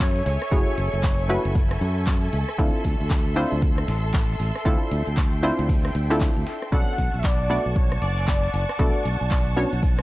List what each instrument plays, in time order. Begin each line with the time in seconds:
Already playing: fingered electric bass F#2, synth stab A3 C#4 E4 F#4 B4, violin section A4, soft synth lead C#5, string machine E5 G#5 C#6
0.00 kick, snare, clap, closed hi-hat
0.16 snare
0.26 fingered electric bass C#2, soft synth lead C#5, snare, closed hi-hat, open hi-hat
0.42 cross-stick, snare, closed hi-hat
0.51 fingered electric bass F#1, synth stab A3 C#4 E4 F#4 G#4, kick, closed hi-hat
0.78 fingered electric bass F#1, closed hi-hat, open hi-hat
0.93 fingered electric bass F#1, closed hi-hat
1.03 kick, snare, clap, closed hi-hat
1.19 closed hi-hat
1.29 synth stab A3 C#4 E4 F#4 B4, closed hi-hat, open hi-hat
1.45 fingered electric bass F#1, closed hi-hat
1.55 kick, closed hi-hat, open hi-hat
1.71 cross-stick, snare
1.81 fingered electric bass F#2, open hi-hat
1.97 closed hi-hat
2.07 kick, snare, clap, closed hi-hat
2.33 fingered electric bass C#2, closed hi-hat, open hi-hat
2.49 cross-stick, closed hi-hat
2.58 fingered electric bass D2, synth stab C4 D4 E4 F4 A4, string machine C6, kick, closed hi-hat
2.85 fingered electric bass D2, kick, snare, closed hi-hat, open hi-hat
3.00 fingered electric bass D2, closed hi-hat
3.10 kick, snare, clap, closed hi-hat
3.26 closed hi-hat
3.36 synth stab C4 D4 E4 F4 C5, closed hi-hat, open hi-hat
3.52 fingered electric bass D2, closed hi-hat
3.62 kick, closed hi-hat
3.78 cross-stick
3.88 fingered electric bass A1, snare, closed hi-hat, open hi-hat
4.04 closed hi-hat
4.14 kick, clap, closed hi-hat
4.30 snare
4.40 fingered electric bass A1, snare, closed hi-hat, open hi-hat
4.56 cross-stick, snare, closed hi-hat
4.65 fingered electric bass D2, synth stab C4 D4 E4 F4 A4, string machine G5, kick, closed hi-hat
4.92 fingered electric bass D2, closed hi-hat, open hi-hat
5.07 fingered electric bass D2, closed hi-hat
5.17 kick, snare, clap, closed hi-hat
5.33 closed hi-hat
5.43 synth stab C4 D4 E4 F4 C5, closed hi-hat, open hi-hat
5.59 fingered electric bass D2, closed hi-hat
5.69 kick, closed hi-hat, open hi-hat
5.85 cross-stick, snare
5.95 fingered electric bass D2, closed hi-hat, open hi-hat
6.10 synth stab C4 D4 E4 F4 A4, snare, closed hi-hat
6.21 kick, clap, closed hi-hat
6.37 fingered electric bass D2, closed hi-hat
6.47 snare, closed hi-hat, open hi-hat
6.62 cross-stick, closed hi-hat
6.72 fingered electric bass B1, synth stab B3 C#4 D4 F#4 A4, string machine F#5 A5 C#6, soft synth lead F#5, violin section A5, kick, closed hi-hat
6.98 fingered electric bass B1, kick, snare, closed hi-hat, open hi-hat
7.14 fingered electric bass B1, closed hi-hat
7.19 soft synth lead E5
7.24 soft synth lead D5, kick, snare, clap, closed hi-hat
7.40 closed hi-hat
7.50 synth stab A3 B3 D4 F#4 D5, closed hi-hat, open hi-hat
7.66 fingered electric bass B1, closed hi-hat
7.76 soft synth lead C#5, kick, closed hi-hat
7.92 cross-stick
8.02 fingered electric bass F#1, soft synth lead D5, closed hi-hat, open hi-hat
8.18 snare, closed hi-hat
8.27 kick, snare, clap, closed hi-hat
8.44 snare
8.54 fingered electric bass F#1, soft synth lead D5, snare, closed hi-hat, open hi-hat
8.69 cross-stick, snare, closed hi-hat
8.79 fingered electric bass B1, synth stab A3 B3 D4 F#4 A4, string machine A5, kick, closed hi-hat
9.05 fingered electric bass B1, closed hi-hat, open hi-hat
9.21 fingered electric bass B1, closed hi-hat
9.31 kick, snare, clap, closed hi-hat
9.47 closed hi-hat
9.57 synth stab B3 C#4 D4 F#4 C#5, closed hi-hat, open hi-hat
9.73 fingered electric bass B1, closed hi-hat
9.83 kick, closed hi-hat, open hi-hat
9.99 cross-stick, snare